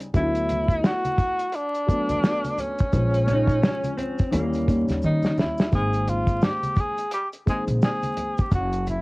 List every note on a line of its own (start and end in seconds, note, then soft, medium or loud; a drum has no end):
0.00 closed hi-hat medium
0.00 maracas soft
0.13 0.80 D2 loud
0.13 1.40 F#3 medium
0.13 1.41 A3 medium
0.13 1.41 B3 medium
0.13 0.23 D4 medium
0.13 0.88 E4 loud
0.13 kick medium
0.13 closed hi-hat medium
0.13 maracas medium
0.22 1.45 E4 medium
0.35 closed hi-hat medium
0.35 maracas soft
0.49 closed hi-hat medium
0.49 high conga soft
0.49 low conga medium
0.49 maracas soft
0.68 kick medium
0.68 closed hi-hat medium
0.68 maracas soft
0.84 1.57 F#4 loud
0.84 snare loud
0.84 maracas soft
1.05 closed hi-hat soft
1.05 high conga medium
1.05 maracas soft
1.18 kick medium
1.18 closed hi-hat medium
1.18 low conga soft
1.18 maracas soft
1.39 closed hi-hat medium
1.39 maracas soft
1.52 2.62 D4 loud
1.52 closed hi-hat medium
1.52 maracas medium
1.74 closed hi-hat soft
1.74 maracas soft
1.87 2.82 F#3 medium
1.87 2.83 A3 medium
1.87 2.83 B3 medium
1.87 2.84 D4 medium
1.87 kick medium
1.87 closed hi-hat medium
1.87 maracas medium
2.09 2.22 E2 medium
2.09 closed hi-hat medium
2.09 high conga medium
2.09 maracas soft
2.24 snare medium
2.24 maracas medium
2.44 closed hi-hat soft
2.44 high conga medium
2.44 maracas soft
2.58 4.69 C#4 loud
2.58 closed hi-hat medium
2.58 low conga medium
2.58 maracas soft
2.79 kick loud
2.79 closed hi-hat medium
2.79 maracas soft
2.93 3.59 A#1 loud
2.93 4.19 F3 medium
2.93 4.20 G#3 medium
2.93 4.21 C#4 medium
2.93 4.20 C5 medium
2.93 kick loud
2.93 closed hi-hat medium
2.93 maracas medium
3.14 closed hi-hat medium
3.14 maracas soft
3.28 3.62 D#4 loud
3.28 closed hi-hat medium
3.28 high conga soft
3.28 low conga medium
3.28 maracas soft
3.48 kick medium
3.48 closed hi-hat medium
3.48 maracas soft
3.62 3.97 C#4 medium
3.62 snare loud
3.62 high conga soft
3.62 maracas medium
3.84 closed hi-hat medium
3.84 high conga medium
3.84 maracas soft
3.97 4.30 C4 medium
3.97 closed hi-hat medium
3.97 low conga soft
3.97 maracas soft
4.18 kick medium
4.18 closed hi-hat medium
4.18 maracas soft
4.31 4.85 D#2 loud
4.31 4.63 E3 medium
4.31 4.64 G3 medium
4.31 4.64 A#3 medium
4.31 4.84 A#3 medium
4.31 4.65 C#4 loud
4.31 closed hi-hat medium
4.31 maracas medium
4.53 closed hi-hat soft
4.53 maracas soft
4.66 5.62 D#3 medium
4.66 5.62 G3 medium
4.66 5.63 A#3 medium
4.66 5.63 C#4 medium
4.66 kick medium
4.66 closed hi-hat medium
4.66 maracas soft
4.88 5.01 D#2 medium
4.88 snare soft
4.88 closed hi-hat soft
4.88 high conga medium
4.88 maracas soft
5.02 5.35 D#3 loud
5.02 5.36 D#4 medium
5.02 maracas medium
5.23 snare medium
5.23 high conga medium
5.23 maracas soft
5.38 5.69 D#2 medium
5.38 5.71 E4 medium
5.38 snare medium
5.38 low conga medium
5.38 maracas soft
5.58 snare medium
5.58 maracas soft
5.71 6.38 G#1 loud
5.71 6.98 D#3 medium
5.71 6.98 G#3 medium
5.71 6.99 A#3 medium
5.71 6.99 C4 medium
5.71 6.11 G#4 loud
5.71 kick medium
5.71 closed hi-hat medium
5.71 maracas medium
5.93 closed hi-hat medium
5.93 maracas soft
6.08 6.46 F4 loud
6.08 closed hi-hat medium
6.08 high conga soft
6.08 low conga medium
6.08 maracas soft
6.27 kick medium
6.27 closed hi-hat medium
6.27 maracas soft
6.41 6.81 G4 loud
6.41 snare loud
6.41 maracas medium
6.63 closed hi-hat soft
6.63 high conga medium
6.63 maracas soft
6.76 7.13 G#4 loud
6.76 kick medium
6.76 closed hi-hat medium
6.76 low conga medium
6.76 maracas soft
6.97 closed hi-hat medium
6.97 maracas soft
7.11 7.29 G4 loud
7.11 closed hi-hat medium
7.11 maracas medium
7.33 closed hi-hat soft
7.33 maracas soft
7.46 8.41 D#3 medium
7.46 8.41 G#3 medium
7.46 8.42 A#3 medium
7.46 8.42 C4 medium
7.46 kick medium
7.46 closed hi-hat medium
7.46 maracas medium
7.50 7.65 G#4 medium
7.67 7.80 A#1 medium
7.67 closed hi-hat medium
7.67 high conga medium
7.67 maracas soft
7.82 8.42 G#4 loud
7.82 snare medium
7.82 maracas medium
8.03 closed hi-hat soft
8.03 high conga medium
8.03 maracas soft
8.17 closed hi-hat medium
8.17 low conga medium
8.17 maracas soft
8.38 8.53 G4 medium
8.38 kick medium
8.38 closed hi-hat soft
8.38 maracas medium
8.51 9.02 F#1 loud
8.51 8.85 F#4 medium
8.51 kick medium
8.51 closed hi-hat medium
8.51 maracas medium
8.73 closed hi-hat medium
8.73 maracas soft
8.87 9.02 E4 medium
8.87 closed hi-hat medium
8.87 high conga soft
8.87 low conga medium
8.87 maracas soft